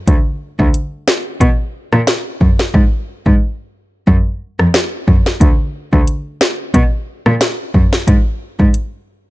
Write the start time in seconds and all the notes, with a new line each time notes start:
0.08 D2, kick, closed hi-hat
0.59 D2, kick
0.74 closed hi-hat
1.08 snare
1.41 B2, kick, closed hi-hat
1.93 A#2, cross-stick
2.07 snare, closed hi-hat
2.41 F#2, kick
2.59 snare
2.74 G#2, kick
3.26 G#2, kick
4.07 F#2, kick
4.59 F2, cross-stick
4.74 snare
5.08 F#2, kick
5.26 snare
5.41 D2, kick, closed hi-hat
5.93 D2, kick
6.07 closed hi-hat
6.41 snare
6.74 B2, kick, closed hi-hat
7.26 A#2, cross-stick
7.41 snare, closed hi-hat
7.74 F#2, kick
7.93 snare
8.08 G#2, kick, closed hi-hat
8.60 G#2, kick
8.74 closed hi-hat